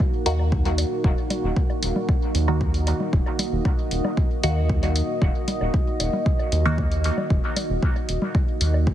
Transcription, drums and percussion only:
0.00 kick loud
0.00 low woodblock soft
0.26 open hi-hat medium
0.39 low woodblock soft
0.52 kick loud
0.65 open hi-hat soft
0.65 low conga medium
0.78 open hi-hat medium
0.78 low woodblock soft
1.04 kick loud
1.30 open hi-hat medium
1.30 low conga medium
1.30 low woodblock soft
1.56 kick loud
1.70 low woodblock soft
1.83 open hi-hat medium
1.96 low conga medium
2.09 kick loud
2.09 low woodblock soft
2.35 open hi-hat medium
2.48 low woodblock soft
2.61 kick loud
2.74 open hi-hat soft
2.87 open hi-hat medium
2.87 low woodblock soft
3.00 low conga medium
3.13 kick loud
3.26 low woodblock soft
3.39 open hi-hat medium
3.39 low conga medium
3.65 kick loud
3.65 low woodblock soft
3.91 open hi-hat medium
4.05 low conga medium
4.05 low woodblock soft
4.17 kick loud
4.43 open hi-hat medium
4.43 low woodblock soft
4.69 kick loud
4.83 open hi-hat soft
4.83 low conga medium
4.83 low woodblock soft
4.96 open hi-hat medium
5.22 kick loud
5.22 low woodblock soft
5.48 open hi-hat medium
5.48 low conga medium
5.61 low woodblock soft
5.74 kick loud
6.00 open hi-hat medium
6.00 low woodblock soft
6.13 low conga medium
6.26 kick loud
6.39 low woodblock soft
6.52 open hi-hat medium
6.78 kick loud
6.78 low woodblock soft
6.92 open hi-hat soft
7.04 open hi-hat medium
7.18 low conga medium
7.18 low woodblock soft
7.30 kick loud
7.56 open hi-hat medium
7.56 low conga medium
7.56 low woodblock soft
7.83 kick loud
7.96 low woodblock soft
8.09 open hi-hat medium
8.22 low conga medium
8.35 kick loud
8.35 low woodblock soft
8.61 open hi-hat medium
8.74 low woodblock soft
8.87 kick loud

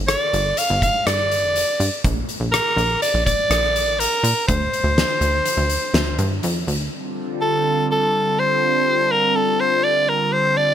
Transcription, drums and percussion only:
0.08 cross-stick loud
0.08 closed hi-hat medium
0.33 closed hi-hat soft
0.57 closed hi-hat medium
0.82 kick medium
0.82 closed hi-hat medium
1.07 cross-stick medium
1.07 closed hi-hat medium
1.32 closed hi-hat soft
1.56 closed hi-hat medium
1.80 closed hi-hat soft
2.04 kick medium
2.04 closed hi-hat medium
2.29 closed hi-hat soft
2.54 cross-stick medium
2.54 closed hi-hat medium
2.78 closed hi-hat soft
3.02 closed hi-hat medium
3.27 kick medium
3.27 closed hi-hat medium
3.51 cross-stick medium
3.51 closed hi-hat medium
3.76 closed hi-hat medium
4.00 closed hi-hat medium
4.24 closed hi-hat medium
4.49 kick medium
4.49 closed hi-hat medium
4.73 closed hi-hat soft
4.98 snare medium
4.98 closed hi-hat medium
5.21 closed hi-hat soft
5.46 closed hi-hat medium
5.70 closed hi-hat medium
5.94 snare medium
5.94 closed hi-hat medium
6.19 closed hi-hat medium
6.43 closed hi-hat medium
6.68 closed hi-hat soft

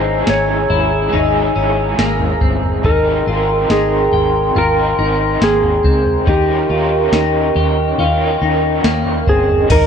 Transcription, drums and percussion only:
0.27 snare loud
0.70 floor tom medium
1.13 floor tom medium
1.99 snare loud
2.20 floor tom medium
2.41 kick medium
2.63 floor tom medium
2.84 kick loud
2.84 floor tom medium
3.70 snare loud
4.13 floor tom soft
4.56 floor tom medium
5.42 snare loud
5.63 floor tom medium
5.84 kick medium
6.06 floor tom medium
6.27 kick loud
6.27 floor tom loud
7.13 snare loud
7.56 floor tom medium
7.99 floor tom medium
8.84 snare loud
9.06 floor tom medium
9.27 kick medium
9.49 floor tom medium
9.70 kick loud
9.70 floor tom loud
9.70 crash loud
9.70 tambourine medium

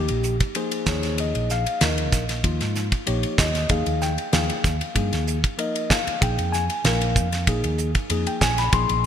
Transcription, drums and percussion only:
0.08 ride medium
0.23 hi-hat pedal medium
0.40 kick medium
0.40 ride medium
0.55 ride medium
0.71 ride medium
0.86 kick loud
0.86 snare loud
0.86 hi-hat pedal medium
1.03 snare soft
1.03 ride medium
1.18 ride medium
1.35 ride medium
1.50 snare soft
1.50 hi-hat pedal medium
1.66 ride medium
1.81 snare loud
1.81 ride medium
1.98 ride medium
2.12 kick medium
2.12 snare soft
2.12 hi-hat pedal medium
2.29 snare soft
2.29 ride medium
2.44 kick medium
2.44 ride medium
2.61 snare soft
2.61 ride medium
2.75 snare soft
2.75 hi-hat pedal medium
2.92 kick medium
2.92 ride medium
3.07 ride medium
3.23 ride medium
3.38 kick medium
3.38 snare loud
3.38 hi-hat pedal medium
3.55 snare soft
3.55 ride medium
3.69 kick loud
3.69 ride medium
3.86 ride medium
4.01 snare soft
4.01 hi-hat pedal medium
4.18 ride medium
4.33 snare loud
4.33 ride medium
4.50 ride medium
4.64 kick medium
4.64 snare soft
4.64 hi-hat pedal medium
4.81 ride medium
4.96 kick medium
4.96 ride medium
5.13 snare soft
5.13 ride medium
5.27 hi-hat pedal medium
5.44 kick medium
5.44 ride medium
5.59 ride medium
5.76 ride medium
5.90 kick medium
5.90 snare loud
5.90 hi-hat pedal medium
6.07 ride medium
6.22 kick medium
6.22 ride medium
6.39 ride medium
6.53 snare soft
6.53 hi-hat pedal medium
6.70 ride medium
6.85 snare loud
6.85 ride medium
7.01 ride medium
7.16 kick medium
7.16 hi-hat pedal medium
7.32 snare soft
7.32 ride medium
7.47 kick medium
7.47 ride medium
7.64 ride medium
7.78 hi-hat pedal medium
7.95 kick medium
7.95 ride medium
8.10 ride medium
8.27 ride medium
8.41 kick medium
8.41 snare loud
8.41 hi-hat pedal medium
8.58 snare soft
8.58 ride medium
8.73 kick loud
8.73 ride medium
8.89 ride medium

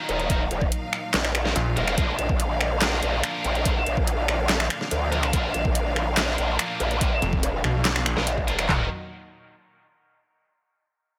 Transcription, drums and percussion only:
0.09 closed hi-hat medium
0.20 closed hi-hat soft
0.30 kick loud
0.30 closed hi-hat medium
0.51 closed hi-hat soft
0.61 kick loud
0.72 closed hi-hat medium
0.93 finger snap medium
1.14 snare loud
1.14 clap medium
1.14 closed hi-hat medium
1.25 finger snap medium
1.35 finger snap medium
1.35 closed hi-hat medium
1.45 snare soft
1.56 closed hi-hat medium
1.77 closed hi-hat soft
1.88 finger snap medium
1.88 closed hi-hat soft
1.98 kick loud
1.98 closed hi-hat medium
2.19 closed hi-hat medium
2.29 kick loud
2.40 closed hi-hat medium
2.61 finger snap medium
2.82 snare loud
2.82 clap medium
2.82 closed hi-hat medium
3.03 closed hi-hat medium
3.23 finger snap medium
3.23 closed hi-hat medium
3.44 closed hi-hat medium
3.55 closed hi-hat soft
3.65 kick loud
3.65 closed hi-hat medium
3.87 closed hi-hat medium
3.97 kick loud
4.07 closed hi-hat medium
4.28 finger snap medium
4.49 snare loud
4.49 clap medium
4.49 closed hi-hat medium
4.60 finger snap medium
4.70 finger snap medium
4.70 closed hi-hat medium
4.81 snare soft
4.91 closed hi-hat medium
5.12 closed hi-hat medium
5.23 finger snap medium
5.23 closed hi-hat soft
5.33 kick loud
5.33 closed hi-hat medium
5.54 closed hi-hat medium
5.65 kick loud
5.75 closed hi-hat medium
5.96 finger snap medium
6.17 snare loud
6.17 clap medium
6.17 closed hi-hat medium
6.38 closed hi-hat medium
6.59 finger snap medium
6.59 closed hi-hat medium
6.80 closed hi-hat medium
6.91 closed hi-hat soft
7.01 kick loud
7.01 closed hi-hat medium
7.22 closed hi-hat medium
7.33 kick loud
7.43 closed hi-hat medium
7.64 finger snap medium
7.85 snare loud
7.85 clap medium
7.85 closed hi-hat medium
7.96 finger snap medium
8.06 finger snap medium
8.06 closed hi-hat medium
8.17 snare soft
8.27 closed hi-hat medium
8.38 kick medium
8.48 closed hi-hat medium
8.59 finger snap medium
8.59 closed hi-hat soft
8.69 kick loud
8.69 clap medium
8.69 floor tom loud

